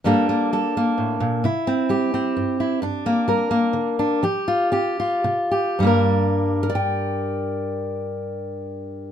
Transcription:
0.04 0.46 G2 medium
0.04 0.52 G3 soft
0.04 0.28 A#3 soft
0.04 1.44 D4 soft
0.04 0.52 A4 medium
0.29 0.74 A#3 medium
0.53 0.93 G3 medium
0.53 1.41 A4 soft
0.77 1.45 A#3 soft
0.98 1.20 A2 soft
1.20 1.43 A#2 medium
1.44 1.85 C3 medium
1.44 2.59 E4 soft
1.67 2.13 C4 medium
1.89 2.31 G3 soft
1.89 3.28 G4 medium
2.14 2.79 C4 soft
2.37 2.77 G2 soft
2.60 2.79 E4 soft
2.82 3.23 G2 medium
2.82 3.98 D4 medium
3.06 3.50 A#3 medium
3.28 3.70 G3 medium
3.28 4.20 A#4 soft
3.51 4.23 A#3 medium
3.73 4.17 D3 medium
3.99 4.23 D4 soft
4.23 4.68 F3 medium
4.23 4.71 G4 medium
4.48 4.99 F4 medium
4.72 5.19 C4 medium
4.72 5.50 G4 soft
5.00 5.77 F4 medium
5.24 5.74 C3 medium
5.51 5.86 G4 medium
5.79 9.12 G2 soft
5.79 9.12 G3 soft
5.79 6.63 A#3 soft
5.84 6.69 D4 soft
5.84 6.63 A#4 soft
6.63 9.12 A#4 medium
6.70 9.12 D5 medium
6.75 9.12 G5 medium

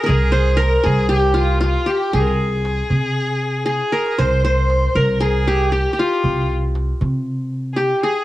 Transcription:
0.00 0.11 A#4 medium
0.00 0.56 A#4 medium
0.06 0.76 C2 loud
0.06 0.83 G#4 medium
0.06 0.61 G#4 medium
0.06 darbuka dum medium
0.32 1.37 C5 medium
0.32 darbuka ka soft
0.57 1.70 A#4 medium
0.57 0.87 A#4 medium
0.57 darbuka tek medium
0.74 darbuka ka soft
0.83 1.75 C2 loud
0.83 1.15 G#4 medium
0.83 1.11 G#4 medium
0.83 darbuka dum medium
1.09 1.86 G4 medium
1.09 1.36 G4 medium
1.09 darbuka ka soft
1.34 1.60 F4 medium
1.39 1.62 F4 medium
1.61 2.95 F4 medium
1.61 darbuka tek medium
1.65 1.91 F4 medium
1.86 2.19 G4 medium
1.86 2.18 G4 medium
2.13 2.80 C2 medium
2.13 3.64 G#4 medium
2.13 2.21 G#4 medium
2.13 darbuka dum medium
2.20 2.29 A#4 medium
2.28 3.68 G#4 medium
2.65 darbuka tek medium
2.90 3.79 C3 medium
2.90 darbuka dum medium
3.43 darbuka ka soft
3.66 4.87 G#4 medium
3.66 4.23 G#4 medium
3.66 darbuka tek soft
3.81 darbuka ka medium
3.92 4.95 A#4 medium
3.92 darbuka tek medium
4.06 darbuka ka medium
4.18 4.86 C2 medium
4.18 4.44 C5 medium
4.18 4.46 C5 medium
4.18 darbuka dum medium
4.33 darbuka ka soft
4.45 5.50 C5 medium
4.45 4.99 C5 medium
4.70 darbuka tek medium
4.84 darbuka ka soft
4.95 5.84 C2 medium
4.95 6.09 A#4 medium
4.95 5.24 A#4 medium
4.95 darbuka dum medium
5.21 5.54 G#4 medium
5.21 5.74 G#4 medium
5.21 darbuka ka soft
5.48 5.72 G4 medium
5.72 5.93 G4 medium
5.72 6.00 G4 medium
5.72 darbuka tek medium
5.93 7.19 G4 soft
5.99 6.50 F4 medium
5.99 7.34 F4 medium
6.24 6.91 C2 medium
6.24 darbuka dum medium
6.38 darbuka ka soft
6.75 darbuka tek medium
6.88 darbuka ka soft
7.01 7.90 C3 medium
7.01 darbuka dum medium
7.26 darbuka ka soft
7.53 darbuka ka soft
7.73 8.09 G4 medium
7.73 7.80 G#4 soft
7.78 8.03 G4 medium
7.78 darbuka tek medium
8.03 8.24 G#4 medium

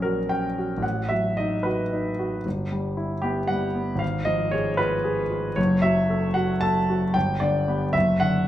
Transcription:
0.00 0.80 A#1 soft
0.00 0.85 F#3 soft
0.00 0.19 C#4 soft
0.00 0.29 A#4 medium
0.04 0.46 F#4 soft
0.29 0.73 C#4 soft
0.29 0.83 G5 medium
0.58 0.84 F#4 soft
0.77 2.38 A1 soft
0.82 1.10 F#5 medium
1.09 1.54 F#3 soft
1.09 1.37 E5 medium
1.37 1.82 D#4 soft
1.37 1.65 D#5 medium
1.63 2.08 F#4 soft
1.63 2.44 B4 medium
1.93 2.35 D#4 soft
2.19 2.45 F#4 soft
2.46 3.98 G1 soft
2.72 3.13 G3 soft
2.97 3.39 E4 soft
3.22 3.65 B3 soft
3.22 3.49 G4 medium
3.48 3.92 G3 soft
3.48 4.01 F#5 medium
3.75 4.01 B3 soft
3.95 5.50 G#1 soft
3.95 4.26 F5 medium
4.25 4.69 F3 soft
4.25 4.52 D#5 medium
4.51 4.95 G#4 soft
4.51 4.79 C#5 medium
4.77 5.20 F4 medium
4.77 5.57 B4 medium
5.04 5.46 G#4 soft
5.30 5.57 F4 soft
5.56 7.11 F#1 medium
5.56 5.83 C#5 medium
5.82 6.25 F#3 soft
5.82 6.35 E5 medium
6.10 6.52 A4 soft
6.34 6.78 F#4 soft
6.34 6.61 F#5 medium
6.61 7.04 A4 soft
6.61 7.14 A5 medium
6.89 7.15 F#4 soft
7.14 7.93 G1 soft
7.14 7.41 G5 medium
7.40 7.84 D3 soft
7.40 7.94 D5 medium
7.68 7.92 B3 soft
7.68 7.92 G4 soft
7.93 8.48 F#1 medium
7.93 8.21 E5 medium
8.20 8.48 D3 soft
8.20 8.48 F#5 medium

